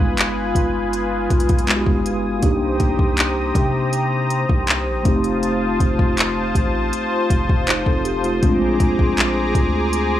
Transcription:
Already playing: 808-style bass G1, tine electric piano G#3 B3 D#4 F4, analog synth pad F4 B4 G#5 D#6
0.18 clap, closed hi-hat
0.55 808-style bass G1, kick, closed hi-hat
0.93 closed hi-hat
1.30 808-style bass B1, kick, closed hi-hat
1.40 closed hi-hat
1.49 kick, closed hi-hat
1.59 closed hi-hat
1.67 tine electric piano G#3 B3 D#4 F#4, clap, closed hi-hat
1.76 tine electric piano G4
1.86 808-style bass G1, kick
2.06 closed hi-hat
2.40 808-style bass C2, tine electric piano A#3 D4 D#4, analog synth pad G4 C5 A#5, kick, closed hi-hat
2.46 tine electric piano G4
2.80 808-style bass C2, kick, closed hi-hat
2.99 kick
3.17 clap, closed hi-hat
3.55 808-style bass C3, kick, closed hi-hat
3.93 closed hi-hat
4.30 closed hi-hat
4.49 808-style bass C2, kick
4.67 clap, closed hi-hat
4.87 808-style bass A#1
5.03 808-style bass F1, tine electric piano A3 C4 D#4, analog synth pad F4 A5, kick, closed hi-hat
5.08 tine electric piano G4
5.24 closed hi-hat
5.43 closed hi-hat
5.80 808-style bass F1, kick, closed hi-hat
5.99 kick
6.18 clap, closed hi-hat
6.55 808-style bass A1, kick, closed hi-hat
6.93 closed hi-hat
7.30 808-style bass F1, kick, closed hi-hat
7.49 kick
7.67 tine electric piano D#4 C5, clap, closed hi-hat
7.86 808-style bass F1, tine electric piano C4 A4, kick
8.05 tine electric piano G4, closed hi-hat
8.24 tine electric piano A3 F4, closed hi-hat
8.40 808-style bass A#1, tine electric piano G#3 C4 D4, analog synth pad G#4 A#5 D6, kick, closed hi-hat
8.46 tine electric piano F4
8.80 808-style bass A#1, kick, closed hi-hat
8.99 808-style bass A#1, kick
9.18 clap, closed hi-hat
9.55 808-style bass D2, kick, closed hi-hat
9.93 closed hi-hat

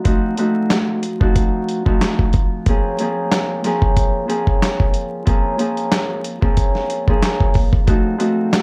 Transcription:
0.04 harp F3 A3 C4 D#4 F#4, kick, closed hi-hat
0.37 harp F3 A3 C4 D#4 F#4, closed hi-hat
0.70 snare, clap, closed hi-hat
1.03 closed hi-hat
1.20 harp F3 A3 C4 D#4 F#4, kick
1.36 kick, closed hi-hat
1.69 closed hi-hat
1.85 harp F3 A3 C4 D#4 F#4, kick
2.01 snare, clap, closed hi-hat
2.19 kick
2.33 kick, closed hi-hat
2.66 harp F3 A#3 C4 C#4 G#4, kick, closed hi-hat
2.99 harp F3 A#3 C4 C#4 G#4, closed hi-hat
3.32 snare, clap, closed hi-hat
3.64 harp F3 A#3 C4 C#4 G#4, snare, closed hi-hat
3.82 kick
3.97 kick, closed hi-hat
4.28 harp F3 A#3 C4 C#4 G#4, closed hi-hat
4.47 kick
4.62 snare, clap, closed hi-hat
4.80 kick
4.94 closed hi-hat
5.26 harp F3 A#3 C4 C#4 G#4, kick, closed hi-hat
5.58 harp F3 A#3 C4 C#4 G#4, closed hi-hat
5.77 closed hi-hat
5.92 snare, clap, closed hi-hat
6.24 closed hi-hat
6.41 harp F3 A#3 C4 C#4 G#4, kick
6.57 kick, closed hi-hat
6.75 snare
6.90 closed hi-hat
7.08 harp F3 A#3 C4 C#4 G#4, kick
7.22 snare, clap, closed hi-hat
7.40 kick
7.54 kick, open hi-hat
7.73 kick
7.87 harp F3 A3 C4 D#4 F#4, kick, closed hi-hat
8.18 harp F3 A3 C4 D#4 F#4, closed hi-hat
8.53 snare, clap, closed hi-hat

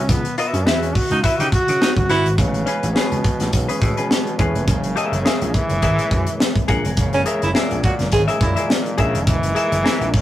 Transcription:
Already playing: trombone C#4
0.09 slap bass C#2, trombone B3, kick, closed hi-hat
0.25 closed hi-hat
0.38 trombone B3, clean electric guitar F#4 B4 E5, closed hi-hat
0.53 slap bass F#2, trombone C#4, closed hi-hat
0.66 slap bass E2, trombone E4, clean electric guitar F#4 B4 E5, snare
0.82 trombone C#4, closed hi-hat
0.94 trombone F#4, kick, open hi-hat
1.11 slap bass C#2, baritone saxophone D#4, closed hi-hat
1.24 trombone E4, clean electric guitar F#4 B4 E5, kick, closed hi-hat
1.39 slap bass C#3, baritone saxophone D#4, trombone G4, closed hi-hat
1.52 trombone F#4, kick, closed hi-hat
1.68 slap bass C#3, closed hi-hat
1.81 baritone saxophone D#4, snare
1.97 slap bass F#1, trombone F#4, kick, closed hi-hat
2.09 slap bass G1, baritone saxophone E4, clean electric guitar F#4 B4 F#5, snare, closed hi-hat
2.26 slap bass G#1, closed hi-hat
2.38 slap bass A1, trombone C#3, tonewheel organ E3 G#3 B3 C#4, kick, closed hi-hat
2.54 closed hi-hat
2.66 clean electric guitar C#4 G#4 B4, closed hi-hat
2.83 slap bass A1, closed hi-hat
2.95 trombone B2, clean electric guitar C#4 G#4 B4, snare
3.11 slap bass C#2, closed hi-hat
3.24 kick, closed hi-hat
3.40 slap bass A1, snare, closed hi-hat
3.52 slap bass B1, trombone C#3, kick, closed hi-hat
3.69 clean electric guitar C#4 G#4 B4, closed hi-hat
3.81 slap bass A2, trombone B2, kick, closed hi-hat
3.97 clean electric guitar C#4 G#4 B4, closed hi-hat
4.11 snare
4.27 closed hi-hat
4.39 slap bass E2, trombone A2, clean electric guitar C#4 G#4 B4, kick, closed hi-hat
4.55 slap bass F1, closed hi-hat
4.67 slap bass F#1, trombone C#3, tonewheel organ G#3 A#3, kick, closed hi-hat
4.83 closed hi-hat
4.96 clean electric guitar G#4 A#4 E5, closed hi-hat
5.12 slap bass F#1, closed hi-hat
5.25 clean electric guitar G#4 A#4 E5, snare
5.41 slap bass A#1, closed hi-hat
5.53 trombone E3, kick, closed hi-hat
5.69 slap bass F#1, closed hi-hat
5.82 slap bass G#1, clean electric guitar G#4 A#4 E5, kick, closed hi-hat
5.99 closed hi-hat
6.11 slap bass F#2, kick, closed hi-hat
6.27 closed hi-hat
6.40 snare
6.56 kick, closed hi-hat
6.68 slap bass A#1, clean electric guitar G#4 A#4 F#5, kick, closed hi-hat
6.85 slap bass F1, closed hi-hat
6.97 slap bass F#1, trombone C#3, kick, closed hi-hat
7.13 baritone saxophone C#4, closed hi-hat
7.26 clean electric guitar G#4 A#4 E5, closed hi-hat
7.42 slap bass F#1, baritone saxophone E4, closed hi-hat
7.55 trombone A#2, clean electric guitar G#4 A#4 E5, snare
7.71 slap bass A#1, closed hi-hat
7.83 trombone A#2, baritone saxophone F#4, kick, closed hi-hat
7.99 slap bass F#1, snare, closed hi-hat
8.12 slap bass G#1, trombone C#3, tonewheel organ D#4, baritone saxophone G#4, kick, closed hi-hat
8.28 clean electric guitar G#4 A#4 E5, closed hi-hat
8.41 slap bass F#2, trombone A#2, baritone saxophone E4, kick, closed hi-hat
8.56 clean electric guitar G#4 A#4 E5, closed hi-hat
8.70 snare
8.86 closed hi-hat
8.98 slap bass A#1, trombone C#3, clean electric guitar G#4 A#4 E5, kick, closed hi-hat
9.15 slap bass F1, closed hi-hat
9.26 slap bass F#1, trombone E3, kick, closed hi-hat
9.43 closed hi-hat
9.55 clean electric guitar G#4 A#4 E5, closed hi-hat
9.72 slap bass F#1, closed hi-hat
9.84 clean electric guitar G#4 A#4 E5, snare
10.01 slap bass A#1, closed hi-hat
10.13 trombone C#3, kick, open hi-hat

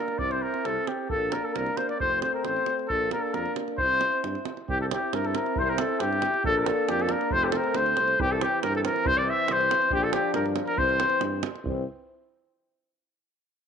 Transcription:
Already playing: euphonium A#3, trombone D4, trumpet A#4
0.08 davul high
0.19 tuba C2, euphonium C4, trombone E4, trumpet D5, flugelhorn D5, davul low
0.30 flugelhorn C5, trumpet C5, davul high
0.42 trumpet A#4, flugelhorn A#4
0.54 davul high
0.64 tuba C2, flugelhorn A4, trumpet A4, davul high
0.87 flugelhorn G4, trumpet G4, davul high
1.08 tuba A#1, euphonium A#3, trombone D4, flugelhorn A4, trumpet A4, davul low
1.31 flugelhorn A#4, trumpet A#4, davul high
1.43 flugelhorn A4, trumpet A4
1.53 tuba C2, flugelhorn A#4, trumpet A#4, davul high
1.66 davul high
1.77 trumpet C5, flugelhorn C5, davul high
1.89 flugelhorn D5, trumpet D5, davul high
1.99 tuba F1, euphonium A3, trombone C4, flugelhorn C5, trumpet C5, davul low
2.22 trumpet C5, flugelhorn C5, davul high
2.34 flugelhorn A#4, trumpet A#4
2.45 tuba A1, trumpet C5, flugelhorn C5, davul high
2.57 davul high
2.66 davul high
2.79 davul high
2.88 tuba A#1, euphonium A#3, trombone D4, trumpet A4, flugelhorn A4, davul low
3.11 flugelhorn A#4, trumpet A#4, davul high
3.22 trumpet A4, flugelhorn A4
3.33 tuba F2, trumpet A#4, flugelhorn A#4, davul high
3.46 davul high
3.56 davul high
3.68 davul high
3.78 tuba C2, euphonium C4, trombone E4, trumpet C5, flugelhorn C5, davul low
4.01 davul high
4.12 davul high
4.24 tuba G2, davul high
4.35 davul high
4.45 davul high
4.57 davul high
4.68 tuba C2, euphonium C4, trombone E4, trumpet G4, flugelhorn G4, davul low
4.81 trumpet A4, flugelhorn A4
4.91 flugelhorn G4, trumpet G4, davul high
5.13 tuba G2, trumpet A#4, flugelhorn A#4, davul high
5.25 flugelhorn A4, trumpet A4, davul high
5.35 trumpet A#4, flugelhorn A#4, davul high
5.46 davul high
5.56 tuba C2, trumpet C5, davul low
5.60 flugelhorn A#4 C5, trumpet C5
5.66 trumpet A#4, flugelhorn C5
5.71 flugelhorn A#4
5.78 trumpet A4, flugelhorn A4, davul high
6.00 tuba G2, trumpet G4, flugelhorn G4, davul high
6.13 davul high
6.22 davul high
6.34 davul high
6.44 tuba A#1, euphonium A#3, trombone D4, trumpet A4, flugelhorn A4, davul low
6.56 trumpet A4 A#4, flugelhorn A4 A#4
6.61 trumpet A#4, flugelhorn A#4
6.66 trumpet A4, flugelhorn A4, davul high
6.89 tuba F2, trumpet G4, flugelhorn G4, davul high
7.00 trumpet A4, flugelhorn A4, davul high
7.09 trumpet A#4, davul high
7.13 flugelhorn A#4
7.21 davul high
7.31 tuba F1, euphonium A3, trombone C4, trumpet C5, davul low
7.35 flugelhorn C5
7.43 trumpet G4 A4, flugelhorn A4
7.48 flugelhorn G4 A4, trumpet A4
7.52 davul high
7.56 trumpet A#4, flugelhorn A#4
7.64 davul high
7.75 tuba D2, trumpet C5, davul high
7.79 flugelhorn C5
7.86 davul high
7.97 tuba C2, davul high
8.08 davul high
8.19 tuba C2, euphonium E3, trombone C4, flugelhorn G4, trumpet G4, davul low
8.31 flugelhorn A4, trumpet A4
8.41 flugelhorn G4, trumpet G4, davul high
8.62 tuba G2, trumpet A#4, flugelhorn A#4, davul high
8.74 flugelhorn A4, trumpet A4, davul high
8.84 flugelhorn A#4, trumpet A#4, davul high
8.96 davul high
9.04 tuba C2, flugelhorn C5, trumpet C5, davul low
9.17 flugelhorn D5, trumpet D5
9.28 flugelhorn E5, trumpet E5
9.48 tuba C2, flugelhorn C5, davul high
9.52 trumpet C5
9.61 davul high
9.71 davul high
9.82 davul high
9.90 tuba A#1, euphonium F3, trombone D4, flugelhorn G4, trumpet G4, davul low
10.03 flugelhorn A4, trumpet A4
10.13 trumpet G4, flugelhorn G4, davul high
10.34 tuba G2, trumpet A#4, flugelhorn A#4, davul high
10.46 davul high
10.56 davul high
10.67 trumpet A#4, flugelhorn A#4, davul high
10.78 tuba C2, euphonium E3, trombone C4, flugelhorn C5, trumpet C5, davul low
10.89 davul high
11.00 davul high
11.10 davul high
11.21 tuba G2, davul high
11.43 davul high
11.55 davul high
11.64 tuba C2, euphonium E3, trombone C4, davul low

